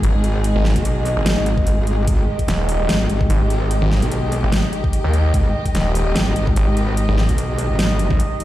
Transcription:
Already playing: string section D#3 G#3 G#4, ambient pad D#5
0.03 detuned saw bass G#1, closed hi-hat
0.15 wobble bass G#1
0.24 closed hi-hat
0.44 closed hi-hat
0.55 detuned saw bass G#1
0.65 snare
0.76 wobble bass B1, kick, closed hi-hat
0.85 closed hi-hat
1.05 open hi-hat
1.17 detuned saw bass G#1
1.26 snare, closed hi-hat
1.37 wobble bass G#1
1.46 closed hi-hat
1.58 kick
1.67 closed hi-hat
1.78 wobble bass G#1
1.87 closed hi-hat
2.07 wobble bass G#1, string section G4, kick, closed hi-hat
2.39 kick, closed hi-hat
2.48 detuned saw bass D#1, snare, closed hi-hat
2.69 open hi-hat
2.89 wobble bass G#1, snare, closed hi-hat
3.10 wobble bass G#1, closed hi-hat
3.21 kick
3.30 detuned saw bass G#1, closed hi-hat
3.41 wobble bass G#1
3.50 closed hi-hat
3.71 closed hi-hat
3.82 detuned saw bass G#1
3.91 snare
4.02 wobble bass B1, closed hi-hat
4.12 closed hi-hat
4.32 open hi-hat
4.43 detuned saw bass G#1
4.52 snare, closed hi-hat
4.73 closed hi-hat
4.84 kick
4.93 closed hi-hat
5.04 detuned saw bass D#2
5.14 closed hi-hat
5.34 wobble bass G#1, kick, closed hi-hat
5.66 kick, closed hi-hat
5.75 detuned saw bass D#1, snare, closed hi-hat
5.95 open hi-hat
6.16 wobble bass G#1, snare, closed hi-hat
6.36 wobble bass G#1, closed hi-hat
6.47 kick
6.56 detuned saw bass G#1, closed hi-hat
6.68 wobble bass G#1
6.77 closed hi-hat
6.97 closed hi-hat
7.08 detuned saw bass G#1
7.18 snare
7.29 wobble bass B1, kick, closed hi-hat
7.38 closed hi-hat
7.58 open hi-hat
7.70 wobble bass G#1
7.79 snare, closed hi-hat
7.99 closed hi-hat
8.11 detuned saw bass G#1, kick
8.20 closed hi-hat
8.40 closed hi-hat

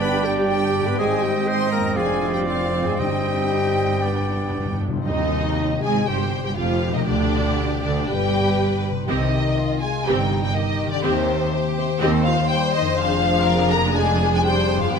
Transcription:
Already playing: double bass section G1, harp G2 G3 G4 D5, cello section G2, bassoon D4, viola section D4 G4, oboe D5, violin section G5, flute G5
0.00 french horn section B3, clarinet B4, violin section B5
0.24 french horn section G3, clarinet G4, violin section G5
0.48 french horn section G3, clarinet G4, violin section G5
0.80 harp G#2
0.85 harp G3, french horn section B3, clarinet B4, violin section B5
0.89 harp D#4
0.94 harp C5
0.98 double bass section G#1, cello section G#2, french horn section G#3, viola section C4, bassoon C4, clarinet G#4, violin section D#5 G#5, oboe D#5
1.22 french horn section G3, clarinet G4, violin section G5
1.47 french horn section C4, clarinet C5, violin section C6
1.71 french horn section A#3, clarinet A#4, violin section A#5
1.79 harp F2
1.83 harp G#3
1.87 harp D4
1.92 french horn section G#3, harp C5, violin section D5, oboe D5
1.96 double bass section F1, cello section F2, viola section F4, clarinet G#4, flute F5, violin section G#5
2.34 french horn section G3, clarinet G4, violin section G5
2.46 french horn section F3, clarinet F4, violin section F5
2.81 harp G2
2.86 french horn section G#3, harp C4, clarinet G#4, violin section G#5
2.95 viola section D#4, clarinet G4, harp C5, violin section G5
2.99 double bass section G1, cello section G2, timpani G2, french horn section G3, oboe D#5, violin section G5, flute G5
3.85 harp G2
3.90 harp B3
3.94 harp D4
3.99 harp D5, oboe D5
4.03 timpani G2, viola section B3 D4, bassoon B3
4.12 timpani G2
4.19 timpani G2
4.27 timpani G2
4.34 timpani G2
4.42 timpani G2
4.50 timpani G2
4.58 timpani G2
4.65 timpani G2
4.73 timpani G2
4.81 timpani G2
4.88 timpani G2, harp C3
4.93 timpani G2, harp C4
4.97 harp D#4
5.02 harp C5
5.06 cello section D#2, double bass section D#2, timpani C3, french horn section D#3, viola section D#4, violin section D#5
5.82 double bass section G#1, cello section G#2, french horn section G#3, viola section G#4, violin section G#5
6.07 double bass section G1, cello section G2, french horn section G3, viola section G4, violin section C5 G5
6.44 cello section G2, french horn section G3, viola section G4, violin section G5
6.56 double bass section F1, cello section F2, french horn section F3, viola section F4, violin section G4 F5
6.88 harp B2
6.93 cello section D#2, french horn section D#3, harp D4, viola section D#4, violin section D#5
6.97 harp F4
7.02 harp G4
7.06 double bass section D2, cello section D2, french horn section D3, viola section D4, violin section D5
7.83 double bass section D2, cello section D2, french horn section D3, viola section D4, violin section D5
8.09 double bass section G1, cello section G2, french horn section G3, viola section G4, violin section B4 G5
8.90 harp C3
8.95 harp C4
8.99 harp D#4
9.04 harp G4
9.08 double bass section C2, timpani C3, cello section C3, french horn section D#3, viola section C4 G4, violin section G4 D#5
9.57 violin section F4
9.81 french horn section G#3, violin section G#5
10.06 double bass section G1, cello section G2, french horn section G3, viola section C4 G4, violin section D#4 G5
10.43 french horn section G3, violin section G5
10.55 french horn section D#3, violin section G4 D#5
10.87 harp D#3
10.91 french horn section D3, harp C4, violin section D5
10.96 harp D#4
11.00 french horn section C3, viola section C4 G4, harp G4, violin section C5
11.04 double bass section D#2, cello section D#2
11.53 violin section G4
11.77 french horn section C3, violin section C5
12.01 cello section D#2, double bass section D#2, french horn section D#3, viola section C4 G4, violin section C5 D#5
12.25 french horn section F3, violin section F5
12.49 french horn section G3, violin section G5
12.74 french horn section D#3, violin section D#5
12.81 harp F2
12.86 harp D4
12.90 harp G#4
12.98 double bass section F1, cello section F2, french horn section F3, viola section D4 G#4, violin section F5
13.47 violin section A#4
13.72 french horn section A#3, violin section A#5
13.96 french horn section G#3, violin section G#4 G#5
14.32 french horn section G#3, violin section G#5
14.45 french horn section G3, violin section C5 G5
14.76 harp G2
14.80 french horn section F3, harp B3, violin section F5
14.85 harp D4
14.89 french horn section G3, harp G4
14.94 double bass section G1, cello section G2, viola section B3 G4, violin section B4 G5

